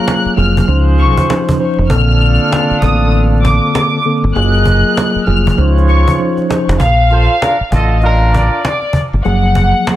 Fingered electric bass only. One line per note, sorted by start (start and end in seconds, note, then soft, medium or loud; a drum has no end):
0.26 muted fingered electric bass stroke soft
0.38 0.61 F1 medium
0.68 1.14 C#2 loud
1.78 1.87 F1 medium
1.90 2.37 A#1 loud
2.71 muted fingered electric bass stroke soft
2.82 3.58 A1 loud
4.24 4.33 G1 medium
4.36 4.82 F#1 loud
5.16 muted fingered electric bass stroke soft
5.27 5.50 F1 medium
5.58 6.05 C#2 loud
6.68 6.77 F1 medium
6.80 7.27 A#1 loud
7.60 muted fingered electric bass stroke soft
7.72 8.48 A1 medium
9.13 9.22 G1 medium
9.25 9.72 F#1 loud